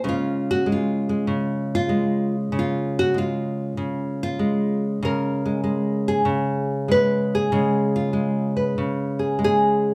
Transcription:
0.04 1.27 C#3 medium
0.04 0.66 G#3 soft
0.09 0.49 F4 medium
0.51 0.68 F#4 medium
0.66 1.09 G#3 medium
0.72 1.74 F4 medium
1.09 1.89 G#3 soft
1.27 2.52 C#3 medium
1.75 2.35 F4 medium
1.89 3.14 G#3 medium
2.52 3.77 C#3 medium
2.59 2.98 F4 medium
2.99 3.17 F#4 medium
3.14 4.39 G#3 medium
3.14 4.21 F4 medium
3.77 5.02 C#3 medium
4.23 4.84 F4 medium
4.39 5.45 G#3 medium
5.03 6.25 C#3 medium
5.03 6.08 A#4 medium
5.46 5.63 G#3 soft
5.64 6.87 G#3 medium
6.08 6.89 G#4 medium
6.25 7.48 C#3 medium
6.88 7.51 G#3 medium
6.88 7.33 B4 medium
7.35 7.95 G#4 medium
7.52 8.76 C#3 medium
7.52 8.12 G#3 medium
7.96 8.56 F4 medium
8.13 9.38 G#3 medium
8.57 9.94 B4 soft
8.78 9.94 C#3 medium
9.19 9.39 G#4 soft
9.39 9.94 G#3 medium
9.44 9.94 G#4 medium

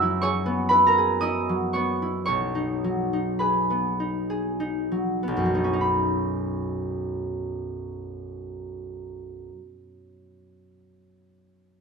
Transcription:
0.00 2.32 F#2 medium
0.00 1.48 F#3 soft
0.00 1.28 G#3 soft
0.00 0.33 B3 soft
0.00 1.88 C#4 soft
0.00 0.69 E4 soft
0.00 0.22 G#4 soft
0.00 2.32 E5 medium
0.00 3.29 F#5 medium
0.00 2.49 G#5 medium
0.00 0.68 B5 medium
0.00 0.20 C#6 medium
0.00 2.31 E6 medium
0.00 3.28 F#6 medium
0.00 2.47 G#6 medium
0.00 0.88 B6 loud
0.00 0.51 C#7 loud
0.21 0.97 G#4 soft
0.21 1.73 C#5 medium
0.21 1.72 C#6 medium
0.46 1.74 B3 soft
0.69 1.21 E4 soft
0.69 3.39 B4 soft
0.69 3.38 B5 medium
0.87 2.33 A#4 soft
0.87 2.32 A#5 medium
0.98 3.39 G#4 soft
1.21 2.01 E4 soft
1.21 5.11 D#5 soft
1.21 2.10 D#6 medium
1.49 2.83 F#3 soft
1.73 3.69 B3 soft
1.73 2.25 C#5 soft
1.73 2.24 C#6 medium
2.02 2.33 E4 soft
2.26 5.26 B1 soft
2.26 6.16 C#5 soft
2.26 6.16 C#6 medium
2.55 3.12 D#4 soft
2.84 4.90 F#3 soft
3.13 3.99 D#4 soft
3.39 4.29 G#4 soft
3.39 7.30 B4 soft
3.39 5.80 B5 soft
3.70 5.22 B3 soft
4.00 4.59 D#4 soft
4.30 5.89 G#4 soft
4.60 5.54 D#4 soft
4.92 5.44 F#3 soft
5.23 5.53 B3 soft
5.28 9.47 B1 soft
5.37 9.56 F#2 soft
5.45 9.65 F#3 soft
5.54 9.74 B3 soft
5.54 5.72 D#4 soft
5.64 9.84 C#4 soft
5.73 9.93 D#4 soft
5.81 10.00 B5 soft

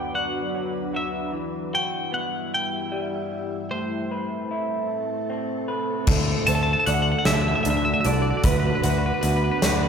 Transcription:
0.00 1.33 D2 medium
0.00 0.94 D3 soft
0.00 1.32 F#3 medium
0.00 2.12 B3 soft
0.00 1.29 D4 medium
0.00 0.13 F#4 soft
0.00 1.32 B4 medium
0.00 0.15 G5 soft
0.15 0.92 F#4 soft
0.15 0.90 F#5 medium
0.55 1.34 F#3 soft
0.93 1.34 F#4 soft
0.93 1.32 E5 soft
1.32 3.31 E3 soft
1.32 3.69 G3 medium
1.32 3.69 E4 medium
1.32 3.69 E5 medium
1.73 3.71 F#4 soft
1.73 2.11 G5 medium
2.12 3.71 B3 soft
2.12 2.50 F#5 medium
2.54 3.68 G5 medium
2.92 3.71 G3 soft
3.70 5.69 A2 soft
3.70 6.05 A3 medium
3.70 6.05 C4 medium
3.70 6.05 A4 medium
3.70 5.25 C5 medium
4.11 5.67 B4 soft
4.51 6.09 E4 soft
5.30 6.08 C4 soft
5.68 6.08 B4 soft
6.07 6.34 D2 medium
6.07 8.05 D3 medium
6.07 8.41 D3 medium
6.07 8.43 A3 medium
6.07 9.88 F#4 medium
6.07 6.48 A4 medium
6.07 kick medium
6.07 crash medium
6.47 6.74 D2 medium
6.47 7.25 A4 medium
6.47 6.87 C5 medium
6.47 6.55 A5 medium
6.47 closed hi-hat medium
6.55 6.62 A5 medium
6.63 6.71 A5 medium
6.73 6.79 A5 medium
6.79 6.86 A5 medium
6.86 7.13 D2 medium
6.86 8.83 F#4 medium
6.86 7.27 D5 medium
6.86 6.94 F#5 medium
6.86 closed hi-hat medium
6.94 7.02 F#5 medium
7.02 7.10 F#5 medium
7.12 7.18 F#5 medium
7.19 7.26 F#5 medium
7.25 7.53 D2 medium
7.25 8.03 A4 medium
7.25 7.33 E5 medium
7.25 8.06 E5 medium
7.25 snare medium
7.25 closed hi-hat medium
7.34 7.41 E5 medium
7.41 7.48 E5 medium
7.48 7.55 E5 medium
7.55 7.63 E5 medium
7.63 7.92 D2 medium
7.63 8.45 D4 medium
7.63 7.70 E5 medium
7.63 closed hi-hat medium
7.70 7.77 E5 medium
7.77 7.84 E5 medium
7.85 7.92 E5 medium
7.94 8.00 E5 soft
8.01 8.44 A4 medium
8.01 8.08 E5 medium
8.01 closed hi-hat medium
8.05 8.31 C2 medium
8.05 8.13 D5 medium
8.05 8.45 D5 medium
8.13 8.21 D5 medium
8.22 8.30 D5 medium
8.30 8.37 D5 medium
8.37 8.44 D5 medium
8.42 8.70 D2 medium
8.42 9.88 D3 medium
8.42 9.88 B3 medium
8.42 8.52 B4 medium
8.42 8.83 B4 medium
8.42 kick medium
8.42 closed hi-hat medium
8.52 8.59 B4 soft
8.60 8.66 B4 medium
8.67 8.74 B4 soft
8.75 8.82 B4 medium
8.82 9.11 D2 medium
8.82 9.61 F#4 medium
8.82 8.90 B4 soft
8.82 9.63 B4 medium
8.82 closed hi-hat medium
8.90 8.98 B4 medium
8.98 9.06 B4 medium
9.06 9.14 B4 medium
9.14 9.21 B4 soft
9.21 9.49 D2 medium
9.21 9.88 B3 medium
9.21 9.28 B4 medium
9.21 closed hi-hat medium
9.29 9.36 B4 soft
9.37 9.44 B4 medium
9.44 9.51 B4 soft
9.51 9.59 B4 medium
9.59 9.88 D2 medium
9.59 9.88 F#4 medium
9.59 9.66 B4 soft
9.59 9.88 D5 medium
9.59 snare loud
9.59 closed hi-hat medium
9.67 9.74 B4 medium
9.76 9.82 B4 soft
9.83 9.88 B4 medium

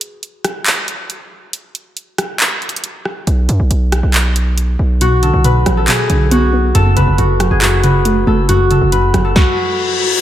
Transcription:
0.00 0.11 G#4 medium
0.00 closed hi-hat medium
0.23 closed hi-hat medium
0.44 cross-stick medium
0.44 closed hi-hat medium
0.66 clap loud
0.66 closed hi-hat medium
0.88 closed hi-hat medium
1.10 closed hi-hat medium
1.53 closed hi-hat medium
1.75 closed hi-hat medium
1.97 closed hi-hat medium
2.18 cross-stick medium
2.18 closed hi-hat medium
2.40 clap loud
2.40 closed hi-hat medium
2.62 closed hi-hat soft
2.69 closed hi-hat medium
2.76 closed hi-hat medium
2.84 closed hi-hat medium
3.05 cross-stick medium
3.27 3.48 B1 loud
3.27 closed hi-hat medium
3.49 3.59 F#2 loud
3.49 closed hi-hat medium
3.60 3.70 B1 loud
3.71 4.02 B1 loud
3.71 closed hi-hat medium
3.92 cross-stick medium
3.92 closed hi-hat medium
4.03 4.76 B1 loud
4.14 clap loud
4.14 closed hi-hat medium
4.36 closed hi-hat medium
4.58 closed hi-hat medium
4.79 5.31 B1 loud
5.01 5.43 B2 medium
5.01 6.31 F#4 loud
5.01 closed hi-hat medium
5.23 6.08 D3 medium
5.23 5.77 A4 medium
5.23 closed hi-hat medium
5.34 5.65 B1 loud
5.44 5.87 B2 medium
5.44 6.96 B4 medium
5.44 closed hi-hat medium
5.66 5.87 A1 loud
5.66 6.75 F#3 loud
5.66 cross-stick medium
5.66 closed hi-hat medium
5.77 5.94 A4 medium
5.88 6.75 B2 medium
5.88 6.81 G#4 medium
5.88 clap loud
5.88 closed hi-hat medium
6.10 6.72 B1 loud
6.10 6.75 D3 medium
6.10 closed hi-hat medium
6.31 6.52 B3 loud
6.31 7.18 F#4 medium
6.31 closed hi-hat medium
6.53 6.75 B3 medium
6.75 6.96 F#1 loud
6.75 7.17 F#2 loud
6.75 7.57 A4 loud
6.75 closed hi-hat medium
6.96 7.07 F#1 loud
6.96 7.82 C#3 medium
6.96 7.83 B4 medium
6.96 closed hi-hat medium
7.07 7.18 F#1 loud
7.18 7.50 F#1 loud
7.18 7.60 F#2 medium
7.18 7.61 F#4 medium
7.18 closed hi-hat medium
7.40 8.49 F#3 medium
7.40 cross-stick medium
7.40 closed hi-hat medium
7.51 8.24 F#1 loud
7.51 8.33 G#4 medium
7.62 8.48 F#2 medium
7.62 8.48 F#4 medium
7.62 clap loud
7.62 closed hi-hat medium
7.83 8.70 C#3 medium
7.83 8.92 B4 medium
7.83 closed hi-hat medium
8.05 8.26 A3 loud
8.05 closed hi-hat medium
8.27 8.79 F#1 loud
8.27 9.36 A3 medium
8.27 8.71 A4 medium
8.49 8.91 F#2 medium
8.49 9.36 F#4 loud
8.49 closed hi-hat medium
8.71 9.79 C#3 medium
8.71 9.24 A4 medium
8.71 closed hi-hat medium
8.81 9.13 F#1 loud
8.92 10.01 F#2 medium
8.92 10.21 B4 medium
8.92 closed hi-hat medium
9.14 9.35 F#1 loud
9.14 10.21 F#3 medium
9.14 cross-stick medium
9.14 closed hi-hat medium
9.25 10.21 A4 medium
9.36 10.21 F#4 medium
9.36 kick loud
9.36 snare medium
9.36 reverse cymbal medium

